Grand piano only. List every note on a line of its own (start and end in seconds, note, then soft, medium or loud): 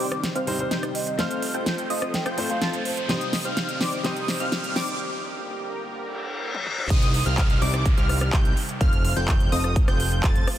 0.00 0.44 C3 medium
0.00 0.44 G3 medium
0.00 0.45 C4 medium
0.00 0.45 D#4 medium
0.00 0.45 C5 loud
0.47 0.56 C3 medium
0.47 0.56 G3 medium
0.47 0.56 C4 medium
0.47 0.57 D#4 medium
0.47 0.57 C5 loud
0.58 1.15 C3 medium
0.58 1.16 G3 medium
0.58 1.16 C4 medium
0.58 1.16 D#4 medium
0.58 1.16 C5 medium
1.18 2.34 A3 medium
1.18 2.35 C4 medium
1.18 2.35 F4 medium
1.18 2.36 C5 loud
2.37 2.47 A3 medium
2.37 2.47 C4 medium
2.37 2.47 F4 medium
2.37 2.47 C5 loud
2.48 3.06 A3 medium
2.48 3.06 C4 medium
2.48 3.07 F4 medium
2.48 3.07 C5 medium
3.08 4.02 C3 medium
3.08 4.02 G3 medium
3.08 4.03 C4 medium
3.08 4.03 D#4 medium
3.08 4.03 C5 loud
4.03 4.97 C3 medium
4.03 4.97 G3 medium
4.03 4.98 C4 medium
4.03 4.98 D#4 medium
4.03 4.98 C5 loud